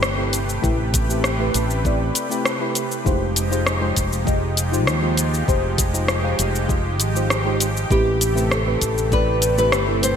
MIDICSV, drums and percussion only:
0, 0, Header, 1, 2, 480
1, 0, Start_track
1, 0, Key_signature, 0, "minor"
1, 0, Tempo, 606061
1, 503, Time_signature, 4, 2, 24, 8
1, 8050, End_track
2, 0, Start_track
2, 0, Title_t, "Drums"
2, 21, Note_on_c, 9, 37, 97
2, 25, Note_on_c, 9, 69, 30
2, 100, Note_off_c, 9, 37, 0
2, 104, Note_off_c, 9, 69, 0
2, 261, Note_on_c, 9, 42, 84
2, 266, Note_on_c, 9, 69, 71
2, 340, Note_off_c, 9, 42, 0
2, 345, Note_off_c, 9, 69, 0
2, 391, Note_on_c, 9, 69, 41
2, 470, Note_off_c, 9, 69, 0
2, 504, Note_on_c, 9, 36, 115
2, 507, Note_on_c, 9, 69, 35
2, 583, Note_off_c, 9, 36, 0
2, 587, Note_off_c, 9, 69, 0
2, 743, Note_on_c, 9, 36, 103
2, 743, Note_on_c, 9, 42, 89
2, 748, Note_on_c, 9, 69, 81
2, 822, Note_off_c, 9, 42, 0
2, 823, Note_off_c, 9, 36, 0
2, 827, Note_off_c, 9, 69, 0
2, 872, Note_on_c, 9, 69, 45
2, 952, Note_off_c, 9, 69, 0
2, 982, Note_on_c, 9, 37, 90
2, 987, Note_on_c, 9, 69, 32
2, 1061, Note_off_c, 9, 37, 0
2, 1066, Note_off_c, 9, 69, 0
2, 1223, Note_on_c, 9, 42, 82
2, 1227, Note_on_c, 9, 69, 71
2, 1302, Note_off_c, 9, 42, 0
2, 1306, Note_off_c, 9, 69, 0
2, 1351, Note_on_c, 9, 69, 42
2, 1430, Note_off_c, 9, 69, 0
2, 1465, Note_on_c, 9, 36, 115
2, 1469, Note_on_c, 9, 69, 34
2, 1544, Note_off_c, 9, 36, 0
2, 1548, Note_off_c, 9, 69, 0
2, 1704, Note_on_c, 9, 42, 88
2, 1709, Note_on_c, 9, 69, 82
2, 1783, Note_off_c, 9, 42, 0
2, 1788, Note_off_c, 9, 69, 0
2, 1833, Note_on_c, 9, 69, 46
2, 1912, Note_off_c, 9, 69, 0
2, 1944, Note_on_c, 9, 37, 92
2, 1949, Note_on_c, 9, 69, 31
2, 2023, Note_off_c, 9, 37, 0
2, 2028, Note_off_c, 9, 69, 0
2, 2180, Note_on_c, 9, 42, 85
2, 2185, Note_on_c, 9, 69, 71
2, 2260, Note_off_c, 9, 42, 0
2, 2264, Note_off_c, 9, 69, 0
2, 2309, Note_on_c, 9, 69, 47
2, 2389, Note_off_c, 9, 69, 0
2, 2424, Note_on_c, 9, 36, 107
2, 2429, Note_on_c, 9, 69, 33
2, 2504, Note_off_c, 9, 36, 0
2, 2508, Note_off_c, 9, 69, 0
2, 2663, Note_on_c, 9, 42, 85
2, 2668, Note_on_c, 9, 69, 85
2, 2742, Note_off_c, 9, 42, 0
2, 2747, Note_off_c, 9, 69, 0
2, 2791, Note_on_c, 9, 69, 46
2, 2870, Note_off_c, 9, 69, 0
2, 2903, Note_on_c, 9, 37, 90
2, 2907, Note_on_c, 9, 69, 34
2, 2982, Note_off_c, 9, 37, 0
2, 2987, Note_off_c, 9, 69, 0
2, 3140, Note_on_c, 9, 42, 78
2, 3143, Note_on_c, 9, 36, 61
2, 3145, Note_on_c, 9, 69, 74
2, 3219, Note_off_c, 9, 42, 0
2, 3222, Note_off_c, 9, 36, 0
2, 3224, Note_off_c, 9, 69, 0
2, 3268, Note_on_c, 9, 69, 47
2, 3347, Note_off_c, 9, 69, 0
2, 3382, Note_on_c, 9, 36, 114
2, 3387, Note_on_c, 9, 69, 34
2, 3461, Note_off_c, 9, 36, 0
2, 3466, Note_off_c, 9, 69, 0
2, 3621, Note_on_c, 9, 42, 81
2, 3626, Note_on_c, 9, 69, 79
2, 3700, Note_off_c, 9, 42, 0
2, 3705, Note_off_c, 9, 69, 0
2, 3751, Note_on_c, 9, 69, 44
2, 3830, Note_off_c, 9, 69, 0
2, 3860, Note_on_c, 9, 37, 88
2, 3864, Note_on_c, 9, 69, 33
2, 3939, Note_off_c, 9, 37, 0
2, 3944, Note_off_c, 9, 69, 0
2, 4098, Note_on_c, 9, 42, 80
2, 4103, Note_on_c, 9, 69, 75
2, 4177, Note_off_c, 9, 42, 0
2, 4182, Note_off_c, 9, 69, 0
2, 4229, Note_on_c, 9, 69, 44
2, 4309, Note_off_c, 9, 69, 0
2, 4341, Note_on_c, 9, 36, 113
2, 4346, Note_on_c, 9, 69, 33
2, 4420, Note_off_c, 9, 36, 0
2, 4425, Note_off_c, 9, 69, 0
2, 4580, Note_on_c, 9, 36, 99
2, 4580, Note_on_c, 9, 42, 83
2, 4585, Note_on_c, 9, 69, 80
2, 4659, Note_off_c, 9, 42, 0
2, 4660, Note_off_c, 9, 36, 0
2, 4664, Note_off_c, 9, 69, 0
2, 4708, Note_on_c, 9, 69, 49
2, 4788, Note_off_c, 9, 69, 0
2, 4818, Note_on_c, 9, 37, 86
2, 4823, Note_on_c, 9, 69, 30
2, 4898, Note_off_c, 9, 37, 0
2, 4902, Note_off_c, 9, 69, 0
2, 5060, Note_on_c, 9, 42, 79
2, 5064, Note_on_c, 9, 69, 70
2, 5139, Note_off_c, 9, 42, 0
2, 5143, Note_off_c, 9, 69, 0
2, 5191, Note_on_c, 9, 69, 45
2, 5270, Note_off_c, 9, 69, 0
2, 5301, Note_on_c, 9, 36, 106
2, 5305, Note_on_c, 9, 69, 33
2, 5380, Note_off_c, 9, 36, 0
2, 5384, Note_off_c, 9, 69, 0
2, 5541, Note_on_c, 9, 42, 82
2, 5546, Note_on_c, 9, 69, 82
2, 5620, Note_off_c, 9, 42, 0
2, 5625, Note_off_c, 9, 69, 0
2, 5672, Note_on_c, 9, 69, 43
2, 5751, Note_off_c, 9, 69, 0
2, 5784, Note_on_c, 9, 37, 88
2, 5789, Note_on_c, 9, 69, 32
2, 5864, Note_off_c, 9, 37, 0
2, 5868, Note_off_c, 9, 69, 0
2, 6023, Note_on_c, 9, 42, 83
2, 6027, Note_on_c, 9, 69, 77
2, 6102, Note_off_c, 9, 42, 0
2, 6107, Note_off_c, 9, 69, 0
2, 6153, Note_on_c, 9, 69, 43
2, 6232, Note_off_c, 9, 69, 0
2, 6261, Note_on_c, 9, 36, 115
2, 6267, Note_on_c, 9, 69, 30
2, 6341, Note_off_c, 9, 36, 0
2, 6346, Note_off_c, 9, 69, 0
2, 6503, Note_on_c, 9, 42, 86
2, 6508, Note_on_c, 9, 69, 81
2, 6582, Note_off_c, 9, 42, 0
2, 6587, Note_off_c, 9, 69, 0
2, 6632, Note_on_c, 9, 69, 45
2, 6711, Note_off_c, 9, 69, 0
2, 6744, Note_on_c, 9, 37, 88
2, 6748, Note_on_c, 9, 69, 30
2, 6823, Note_off_c, 9, 37, 0
2, 6828, Note_off_c, 9, 69, 0
2, 6981, Note_on_c, 9, 42, 76
2, 6983, Note_on_c, 9, 36, 55
2, 6986, Note_on_c, 9, 69, 72
2, 7061, Note_off_c, 9, 42, 0
2, 7062, Note_off_c, 9, 36, 0
2, 7065, Note_off_c, 9, 69, 0
2, 7112, Note_on_c, 9, 69, 41
2, 7191, Note_off_c, 9, 69, 0
2, 7223, Note_on_c, 9, 36, 104
2, 7226, Note_on_c, 9, 69, 33
2, 7302, Note_off_c, 9, 36, 0
2, 7305, Note_off_c, 9, 69, 0
2, 7460, Note_on_c, 9, 42, 85
2, 7464, Note_on_c, 9, 69, 74
2, 7539, Note_off_c, 9, 42, 0
2, 7544, Note_off_c, 9, 69, 0
2, 7588, Note_on_c, 9, 69, 43
2, 7667, Note_off_c, 9, 69, 0
2, 7701, Note_on_c, 9, 37, 84
2, 7705, Note_on_c, 9, 69, 29
2, 7780, Note_off_c, 9, 37, 0
2, 7785, Note_off_c, 9, 69, 0
2, 7944, Note_on_c, 9, 42, 80
2, 7949, Note_on_c, 9, 69, 69
2, 8023, Note_off_c, 9, 42, 0
2, 8028, Note_off_c, 9, 69, 0
2, 8050, End_track
0, 0, End_of_file